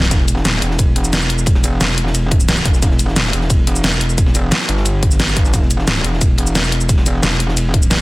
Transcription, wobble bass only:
0.11 0.61 E1 loud
0.62 0.95 E1 loud
0.96 1.79 E1 medium
1.81 2.64 E1 loud
2.65 2.81 E1 loud
2.82 3.32 E1 loud
3.33 3.66 E1 loud
3.67 4.51 E1 medium
4.69 5.52 G1 loud
5.54 6.03 E1 loud
6.04 6.37 E1 loud
6.38 7.22 E1 loud
7.23 8.01 E1 loud

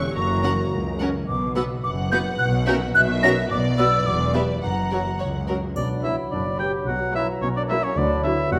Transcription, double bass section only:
0.15 0.63 F#1 medium
0.71 1.19 C#2 medium
1.28 1.75 B1 medium
1.84 2.31 F#1 medium
2.40 2.86 B1 medium
2.95 3.42 B1 medium
3.50 3.97 B1 medium
4.06 4.53 E1 medium
4.63 5.10 F#1 medium
5.20 5.67 C#2 medium
5.76 6.20 B1 medium
6.32 6.76 F#1 medium
6.88 7.31 B1 medium
7.42 7.85 B1 medium
7.97 8.41 D2 medium
8.52 8.59 E1 medium

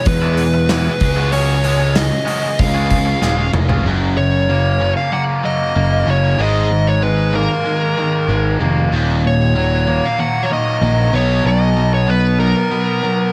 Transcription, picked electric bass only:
0.06 0.87 E2 medium
1.01 2.09 C#2 loud
2.60 3.13 C#2 medium
3.21 3.50 D#1 medium
3.52 3.81 F1 medium
3.84 4.93 F#1 medium
5.76 6.03 F#1 medium
6.07 6.34 F#1 medium
6.38 7.47 G#1 medium
8.28 8.55 G#1 medium
8.60 8.87 F1 medium
8.91 10.00 D#1 medium
10.81 11.08 A#1 medium
11.12 11.40 B1 medium
11.45 12.53 B1 medium

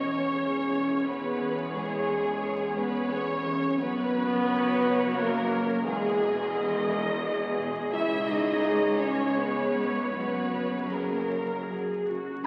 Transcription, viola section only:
0.00 3.77 G#4 medium
0.00 3.76 C#5 medium
3.79 5.82 F#4 medium
3.79 5.81 C#5 medium
5.85 10.09 G#4 medium
5.85 7.90 D#5 medium
7.93 10.80 C#5 medium
10.14 10.80 F#4 medium
10.90 11.27 G#4 medium
11.30 11.69 A#4 medium
11.70 12.08 G#4 medium
12.08 12.46 F#4 medium

